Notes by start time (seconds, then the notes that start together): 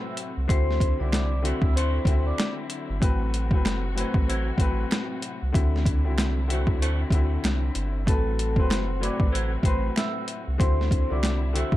Already playing: A2 C3 F#3 A3 C4 F#4 B4 E5 E6
0.17 closed hi-hat
0.37 C2
0.48 D2 D3 F#3 C4 E4 F#4 C5 C6, kick, closed hi-hat
0.71 snare
0.80 kick, closed hi-hat
0.99 C2 D3 C4 E4 F#4 D5 D6
1.12 finger snap, snare, closed hi-hat
1.42 D3 A3 C4 E4 F#4 C5 E5, closed hi-hat
1.47 E6
1.62 D2, kick
1.75 A3 F#4 C5 C6, closed hi-hat
2.05 D2 D3 C4 E4 F#4, kick, closed hi-hat
2.26 D5 D6
2.38 finger snap, snare, closed hi-hat
2.70 closed hi-hat
2.90 G1
3.00 A1 A2 C3 F#3 A3 C4 F#4 B4, kick, closed hi-hat
3.34 closed hi-hat
3.51 F#1 A2 F#3 C4 B4, kick
3.65 finger snap, snare, closed hi-hat
3.95 A2 F#3 C4 E4 B4 C5, closed hi-hat
4.14 A1, kick
4.27 F#3 E4 C5, closed hi-hat
4.58 A1 A2 F#3 C4 B4, kick, closed hi-hat
4.91 finger snap, snare, closed hi-hat
5.22 closed hi-hat
5.43 C2
5.52 D2 D3 F#3 C4 E4 F#4, kick, closed hi-hat
5.76 snare
5.86 kick, closed hi-hat
6.04 C2 D3 C4 E4 F#4
6.18 finger snap, snare, closed hi-hat
6.48 D3 A3 C4 E4 F#4 C5, closed hi-hat
6.67 D2, kick
6.81 A3 F#4 C5, closed hi-hat
7.10 D2 D3 C4 E4 F#4, kick, closed hi-hat
7.44 C2, finger snap, snare, closed hi-hat
7.75 G1, closed hi-hat
8.06 A1 A2 C3 F#3 A3 C4 F#4 A4 B4 A5, kick, closed hi-hat
8.39 closed hi-hat
8.56 F#1 A2 F#3 C4 B4 C5 C6, kick
8.70 finger snap, snare, closed hi-hat
9.00 A2 F#3 C4 E4 B4 D5 D6, closed hi-hat
9.20 A1, kick
9.31 F#3 E4 C5, closed hi-hat
9.63 A1 A2 F#3 C4 B4 C5 C6, kick, closed hi-hat
9.96 E5 E6, finger snap, snare, closed hi-hat
10.28 closed hi-hat
10.48 C2
10.58 D2 D3 F#3 C4 E4 F#4 C5 C6, kick, closed hi-hat
10.81 snare
10.91 kick, closed hi-hat
11.10 C2 D3 C4 E4 F#4 D5 D6
11.23 finger snap, snare, closed hi-hat
11.53 D3 A3 C4 E4 F#4 C5 E5, closed hi-hat
11.57 E6
11.72 D2, kick